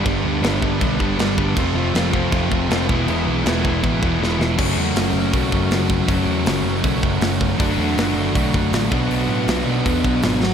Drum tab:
CC |x-x-x-x-|x-x-x-x-|x-x-x---|x-------|
HH |--------|--------|--------|--o-o-o-|
SD |--o---o-|--o---o-|--o---oo|--o---o-|
BD |o--ooo-o|o--ooo-o|---ooo--|o---oo-o|

CC |--------|--------|--------|
HH |o-o-o-o-|o-o-o-o-|o-o-o-o-|
SD |--o---o-|--o---o-|--o---oo|
BD |o---oo-o|o---oo-o|----oo--|